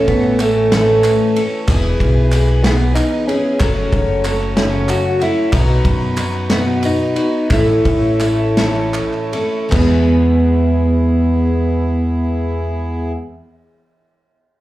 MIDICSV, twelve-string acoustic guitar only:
0, 0, Header, 1, 2, 480
1, 0, Start_track
1, 0, Key_signature, 4, "major"
1, 0, Tempo, 641711
1, 1259, Time_signature, 6, 3, 24, 8
1, 4620, Tempo, 678733
1, 6060, Tempo, 756620
1, 7020, Tempo, 802139
1, 9940, End_track
2, 0, Start_track
2, 0, Title_t, "Twelve-string acoustic guitar"
2, 0, Program_c, 0, 25
2, 0, Note_on_c, 0, 45, 93
2, 0, Note_on_c, 0, 52, 85
2, 0, Note_on_c, 0, 57, 99
2, 0, Note_on_c, 0, 61, 83
2, 0, Note_on_c, 0, 64, 86
2, 0, Note_on_c, 0, 69, 92
2, 283, Note_off_c, 0, 57, 0
2, 292, Note_on_c, 0, 57, 64
2, 294, Note_off_c, 0, 45, 0
2, 294, Note_off_c, 0, 61, 0
2, 300, Note_off_c, 0, 69, 0
2, 303, Note_on_c, 0, 61, 58
2, 304, Note_off_c, 0, 64, 0
2, 307, Note_on_c, 0, 64, 74
2, 315, Note_on_c, 0, 69, 67
2, 530, Note_off_c, 0, 69, 0
2, 531, Note_off_c, 0, 64, 0
2, 536, Note_off_c, 0, 57, 0
2, 537, Note_off_c, 0, 61, 0
2, 539, Note_on_c, 0, 69, 82
2, 540, Note_on_c, 0, 64, 78
2, 544, Note_off_c, 0, 52, 0
2, 546, Note_on_c, 0, 61, 72
2, 547, Note_on_c, 0, 52, 64
2, 547, Note_on_c, 0, 57, 72
2, 551, Note_on_c, 0, 45, 65
2, 1008, Note_off_c, 0, 69, 0
2, 1015, Note_off_c, 0, 64, 0
2, 1017, Note_on_c, 0, 69, 59
2, 1022, Note_off_c, 0, 61, 0
2, 1023, Note_off_c, 0, 52, 0
2, 1023, Note_off_c, 0, 57, 0
2, 1024, Note_on_c, 0, 64, 57
2, 1025, Note_off_c, 0, 45, 0
2, 1031, Note_on_c, 0, 61, 54
2, 1037, Note_on_c, 0, 57, 52
2, 1249, Note_off_c, 0, 57, 0
2, 1252, Note_off_c, 0, 64, 0
2, 1252, Note_on_c, 0, 52, 81
2, 1256, Note_off_c, 0, 61, 0
2, 1258, Note_off_c, 0, 69, 0
2, 1259, Note_on_c, 0, 59, 99
2, 1261, Note_on_c, 0, 64, 109
2, 1266, Note_on_c, 0, 68, 103
2, 1720, Note_off_c, 0, 52, 0
2, 1729, Note_on_c, 0, 52, 75
2, 1731, Note_off_c, 0, 59, 0
2, 1734, Note_off_c, 0, 64, 0
2, 1740, Note_on_c, 0, 59, 67
2, 1742, Note_off_c, 0, 68, 0
2, 1743, Note_on_c, 0, 64, 76
2, 1751, Note_on_c, 0, 68, 82
2, 1968, Note_off_c, 0, 68, 0
2, 1973, Note_off_c, 0, 59, 0
2, 1974, Note_off_c, 0, 52, 0
2, 1977, Note_on_c, 0, 68, 76
2, 1980, Note_off_c, 0, 64, 0
2, 1982, Note_on_c, 0, 59, 72
2, 1988, Note_on_c, 0, 52, 70
2, 2447, Note_off_c, 0, 68, 0
2, 2456, Note_on_c, 0, 68, 65
2, 2460, Note_off_c, 0, 59, 0
2, 2463, Note_off_c, 0, 52, 0
2, 2469, Note_on_c, 0, 64, 54
2, 2477, Note_on_c, 0, 59, 52
2, 2695, Note_on_c, 0, 42, 89
2, 2697, Note_off_c, 0, 68, 0
2, 2697, Note_on_c, 0, 49, 86
2, 2702, Note_off_c, 0, 59, 0
2, 2702, Note_off_c, 0, 64, 0
2, 2702, Note_on_c, 0, 54, 80
2, 2705, Note_on_c, 0, 57, 83
2, 2705, Note_on_c, 0, 61, 85
2, 2706, Note_on_c, 0, 66, 88
2, 3168, Note_off_c, 0, 54, 0
2, 3171, Note_on_c, 0, 54, 67
2, 3172, Note_off_c, 0, 57, 0
2, 3176, Note_off_c, 0, 42, 0
2, 3177, Note_off_c, 0, 49, 0
2, 3181, Note_off_c, 0, 61, 0
2, 3181, Note_on_c, 0, 57, 72
2, 3188, Note_on_c, 0, 61, 69
2, 3190, Note_off_c, 0, 66, 0
2, 3193, Note_on_c, 0, 66, 71
2, 3407, Note_off_c, 0, 66, 0
2, 3409, Note_off_c, 0, 61, 0
2, 3414, Note_off_c, 0, 54, 0
2, 3415, Note_off_c, 0, 57, 0
2, 3416, Note_on_c, 0, 66, 77
2, 3418, Note_on_c, 0, 61, 72
2, 3424, Note_on_c, 0, 57, 75
2, 3426, Note_on_c, 0, 54, 71
2, 3427, Note_on_c, 0, 49, 72
2, 3430, Note_on_c, 0, 42, 70
2, 3883, Note_off_c, 0, 66, 0
2, 3892, Note_off_c, 0, 61, 0
2, 3892, Note_on_c, 0, 66, 56
2, 3896, Note_off_c, 0, 57, 0
2, 3901, Note_off_c, 0, 49, 0
2, 3901, Note_off_c, 0, 54, 0
2, 3901, Note_on_c, 0, 61, 65
2, 3903, Note_off_c, 0, 42, 0
2, 3905, Note_on_c, 0, 57, 51
2, 3913, Note_on_c, 0, 54, 53
2, 4126, Note_off_c, 0, 54, 0
2, 4132, Note_on_c, 0, 47, 97
2, 4134, Note_off_c, 0, 66, 0
2, 4135, Note_on_c, 0, 54, 96
2, 4137, Note_off_c, 0, 57, 0
2, 4139, Note_off_c, 0, 61, 0
2, 4140, Note_on_c, 0, 59, 84
2, 4142, Note_on_c, 0, 63, 97
2, 4146, Note_on_c, 0, 66, 90
2, 4607, Note_off_c, 0, 54, 0
2, 4615, Note_off_c, 0, 59, 0
2, 4616, Note_on_c, 0, 54, 66
2, 4617, Note_off_c, 0, 47, 0
2, 4622, Note_off_c, 0, 63, 0
2, 4624, Note_off_c, 0, 66, 0
2, 4624, Note_on_c, 0, 59, 69
2, 4629, Note_on_c, 0, 63, 77
2, 4634, Note_on_c, 0, 66, 80
2, 4837, Note_off_c, 0, 66, 0
2, 4840, Note_off_c, 0, 63, 0
2, 4843, Note_off_c, 0, 59, 0
2, 4845, Note_on_c, 0, 66, 80
2, 4847, Note_off_c, 0, 54, 0
2, 4849, Note_on_c, 0, 63, 76
2, 4851, Note_on_c, 0, 59, 75
2, 4856, Note_on_c, 0, 54, 68
2, 4857, Note_on_c, 0, 47, 60
2, 5305, Note_off_c, 0, 66, 0
2, 5314, Note_on_c, 0, 66, 64
2, 5316, Note_off_c, 0, 63, 0
2, 5322, Note_off_c, 0, 59, 0
2, 5324, Note_off_c, 0, 47, 0
2, 5324, Note_off_c, 0, 54, 0
2, 5324, Note_on_c, 0, 63, 55
2, 5334, Note_on_c, 0, 59, 58
2, 5557, Note_on_c, 0, 45, 90
2, 5558, Note_off_c, 0, 66, 0
2, 5560, Note_on_c, 0, 52, 76
2, 5561, Note_off_c, 0, 59, 0
2, 5563, Note_on_c, 0, 57, 87
2, 5564, Note_off_c, 0, 63, 0
2, 5564, Note_on_c, 0, 61, 91
2, 5568, Note_on_c, 0, 64, 89
2, 5574, Note_on_c, 0, 69, 99
2, 6041, Note_off_c, 0, 57, 0
2, 6049, Note_off_c, 0, 61, 0
2, 6050, Note_on_c, 0, 57, 67
2, 6056, Note_off_c, 0, 45, 0
2, 6057, Note_off_c, 0, 52, 0
2, 6057, Note_off_c, 0, 64, 0
2, 6058, Note_on_c, 0, 61, 66
2, 6064, Note_off_c, 0, 69, 0
2, 6065, Note_on_c, 0, 64, 63
2, 6071, Note_on_c, 0, 69, 74
2, 6279, Note_off_c, 0, 69, 0
2, 6282, Note_off_c, 0, 61, 0
2, 6282, Note_off_c, 0, 64, 0
2, 6285, Note_off_c, 0, 57, 0
2, 6287, Note_on_c, 0, 69, 81
2, 6289, Note_on_c, 0, 64, 73
2, 6290, Note_on_c, 0, 61, 75
2, 6295, Note_on_c, 0, 57, 68
2, 6297, Note_on_c, 0, 52, 73
2, 6300, Note_on_c, 0, 45, 70
2, 6759, Note_off_c, 0, 69, 0
2, 6765, Note_off_c, 0, 64, 0
2, 6766, Note_on_c, 0, 69, 60
2, 6769, Note_off_c, 0, 61, 0
2, 6771, Note_off_c, 0, 57, 0
2, 6772, Note_off_c, 0, 52, 0
2, 6772, Note_on_c, 0, 64, 70
2, 6774, Note_off_c, 0, 45, 0
2, 6780, Note_on_c, 0, 61, 55
2, 6786, Note_on_c, 0, 57, 54
2, 6996, Note_on_c, 0, 52, 86
2, 7018, Note_off_c, 0, 57, 0
2, 7018, Note_off_c, 0, 69, 0
2, 7021, Note_off_c, 0, 64, 0
2, 7021, Note_on_c, 0, 56, 89
2, 7024, Note_off_c, 0, 61, 0
2, 7039, Note_on_c, 0, 59, 88
2, 7054, Note_on_c, 0, 64, 83
2, 7071, Note_on_c, 0, 68, 98
2, 9092, Note_off_c, 0, 52, 0
2, 9115, Note_off_c, 0, 56, 0
2, 9133, Note_off_c, 0, 59, 0
2, 9148, Note_off_c, 0, 64, 0
2, 9166, Note_off_c, 0, 68, 0
2, 9940, End_track
0, 0, End_of_file